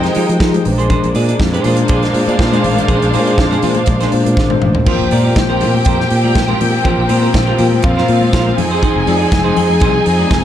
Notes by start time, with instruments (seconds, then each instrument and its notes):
Already playing: tine electric piano F3 D#4 G4 G#4 A#4, string section F3 G#3 D#4 G5, violin section D#4 C5 G5
0.03 muted clean electric guitar stroke, snare, closed hi-hat, muted conga
0.15 tine electric piano F3 D#4 G4 G#4, fingered electric bass F3, clean electric guitar G#3 D#4 G4, open hi-hat
0.28 fingered electric bass F3, muted clean electric guitar stroke, closed hi-hat, high conga
0.40 fingered electric bass F3, clean electric guitar G#3 D#4 G4, kick, snare
0.53 tine electric piano F3 D#4 G4 G#4, muted clean electric guitar stroke, closed hi-hat, high conga
0.65 fingered electric bass A#1, tine electric piano A#2 G#3 D4 B4, string section G#3 A#3 D4, muted clean electric guitar stroke, open hi-hat, low conga
0.72 tine electric piano C5
0.78 clean electric guitar D4 G#4 C5, closed hi-hat
0.90 clean electric guitar D4 G#4 C5, kick, closed hi-hat, muted conga, low conga
1.03 fingered electric bass A#1, closed hi-hat, muted conga
1.14 fingered electric bass A#2, clean electric guitar D4 G#4 D5, open hi-hat, high conga
1.28 clean electric guitar D4 G#4 D5, closed hi-hat
1.39 fingered electric bass F2, muted clean electric guitar stroke, kick, snare, muted conga
1.53 clean electric guitar D4 G#4 C5, closed hi-hat, high conga
1.64 tine electric piano A#2 G#3 D4 C5, fingered electric bass A#2, violin section D4 C5 F5, clean electric guitar D4 G#4 C5, open hi-hat, low conga
1.76 muted clean electric guitar stroke, closed hi-hat, high conga
1.88 fingered electric bass A#1, clean electric guitar D4 G#4 C5, kick, closed hi-hat
2.03 muted clean electric guitar stroke, snare, closed hi-hat
2.13 tine electric piano A#2 G#3 D4 C5, fingered electric bass A#2, muted clean electric guitar stroke, open hi-hat
2.27 fingered electric bass A#2, clean electric guitar D4 G#4 D5, closed hi-hat, high conga
2.39 fingered electric bass A#2, muted clean electric guitar stroke, kick, snare
2.51 tine electric piano A#2 G#3 D4 G#4, clean electric guitar D4 G#4 C5, closed hi-hat, muted conga, high conga
2.64 fingered electric bass A1, muted clean electric guitar stroke, open hi-hat, low conga
2.76 muted clean electric guitar stroke, closed hi-hat
2.87 fingered electric bass A#1, tine electric piano A#2 G#3 C#4 C5, clean electric guitar D4 G#4 C5, kick, closed hi-hat, muted conga, low conga
2.95 tine electric piano D4
3.02 fingered electric bass A#1, closed hi-hat
3.12 fingered electric bass A#2, clean electric guitar D4 G#4 C5, open hi-hat, high conga
3.26 clean electric guitar D4 G#4 C5, closed hi-hat
3.38 fingered electric bass F2, kick, snare
3.51 clean electric guitar D4 G#4 C5, closed hi-hat, high conga
3.62 tine electric piano A#2 G#3 D4 C5, fingered electric bass A#2, clean electric guitar D4 G#4 C5, open hi-hat, low conga
3.75 muted clean electric guitar stroke, closed hi-hat, high conga
3.86 fingered electric bass A#1, muted clean electric guitar stroke, kick, closed hi-hat
4.00 clean electric guitar D4 G#4 C5, snare, closed hi-hat
4.11 tine electric piano A#2 G#3 D4 C5 F5, fingered electric bass A#2, muted clean electric guitar stroke, open hi-hat
4.25 fingered electric bass A#2, muted clean electric guitar stroke, closed hi-hat, high conga
4.37 fingered electric bass G#1, tine electric piano C5, muted clean electric guitar stroke, kick, snare
4.50 tine electric piano A#2 G#3 D4 C5, muted clean electric guitar stroke, high tom, high conga
4.62 fingered electric bass A1, mid tom, low conga
4.75 muted clean electric guitar stroke, floor tom
4.86 fingered electric bass A#1, tine electric piano A#2 A#3 F4 C5, string section F3 A#3 C4, clean electric guitar F4 A#4 C5, violin section G4 G5, kick, crash, muted conga, low conga
4.99 fingered electric bass A#1, muted conga
5.11 tine electric piano A#2 A#3 F4 C5, fingered electric bass A#2, clean electric guitar F4 A#4 D5, open hi-hat, high conga
5.25 clean electric guitar F4 A#4 D5
5.36 fingered electric bass A#1, muted clean electric guitar stroke, kick, snare, closed hi-hat
5.49 clean electric guitar F4 A#4 C5, muted conga, high conga
5.60 tine electric piano A#2 A#3 F4 C5, fingered electric bass A#2, clean electric guitar F4 A#4 C5, open hi-hat, low conga
5.74 muted clean electric guitar stroke, high conga
5.85 fingered electric bass F2, clean electric guitar F4 A#4 C5, kick, closed hi-hat
5.99 muted clean electric guitar stroke, snare
6.10 fingered electric bass A#2, muted clean electric guitar stroke, open hi-hat
6.24 clean electric guitar F4 A#4 D5, high conga
6.35 fingered electric bass A#1, muted clean electric guitar stroke, kick, snare, closed hi-hat
6.48 clean electric guitar F4 A#4 C5, high conga
6.60 fingered electric bass A#2, muted clean electric guitar stroke, open hi-hat, low conga
6.73 muted clean electric guitar stroke
6.84 fingered electric bass A#1, tine electric piano A#2 A#3 F4 C5, clean electric guitar F4 A#4 C5, kick, closed hi-hat, muted conga, low conga
6.98 fingered electric bass A#1, muted conga
7.09 tine electric piano A#2 A#3 F4 C5, fingered electric bass A#2, clean electric guitar F4 A#4 C5, open hi-hat, high conga
7.22 clean electric guitar F4 A#4 C5
7.34 fingered electric bass A#1, muted clean electric guitar stroke, kick, snare, closed hi-hat, muted conga
7.47 clean electric guitar F4 A#4 C5, muted conga, high conga
7.58 tine electric piano A#2 A#3 F4 C5, fingered electric bass A#2, clean electric guitar F4 A#4 C5, open hi-hat, low conga
7.71 muted clean electric guitar stroke, high conga
7.82 fingered electric bass F2, violin section F4 F5, muted clean electric guitar stroke, kick, closed hi-hat
7.96 clean electric guitar F4 A#4 C5, snare, muted conga
8.08 tine electric piano A#2 A#3 F4 C5, fingered electric bass A#2, muted clean electric guitar stroke, open hi-hat
8.21 muted clean electric guitar stroke, high conga
8.32 fingered electric bass A#1, clean electric guitar F4 A#4 C5, kick, snare, closed hi-hat, muted conga
8.45 muted clean electric guitar stroke, high conga
8.57 fingered electric bass F2, tine electric piano F3 C4 D#4 G#4, string section D#4 G#4, violin section G#4 G#5, muted clean electric guitar stroke, open hi-hat, low conga
8.71 clean electric guitar D#4 G#4 C5
8.83 clean electric guitar D#4 G#4 C5, kick, closed hi-hat, low conga
8.95 fingered electric bass F1, muted conga
9.06 fingered electric bass F2, tine electric piano F3 C4 D#4 G#4, clean electric guitar D#4 G#4 D5, open hi-hat, high conga
9.20 clean electric guitar D#4 G#4 D5
9.32 fingered electric bass F1, muted clean electric guitar stroke, kick, snare, closed hi-hat
9.44 clean electric guitar D#4 G#4 C5, muted conga, high conga
9.56 fingered electric bass F2, tine electric piano F3 C4 D#4 G#4, clean electric guitar D#4 G#4 C5, open hi-hat, low conga
9.69 muted clean electric guitar stroke, high conga
9.80 fingered electric bass C2, clean electric guitar D#4 G#4 C5, kick, closed hi-hat, muted conga
9.94 muted clean electric guitar stroke, muted conga
10.06 fingered electric bass F2, muted clean electric guitar stroke, open hi-hat
10.19 clean electric guitar D#4 G#4 D5, high conga
10.31 fingered electric bass F1, muted clean electric guitar stroke, kick, snare, closed hi-hat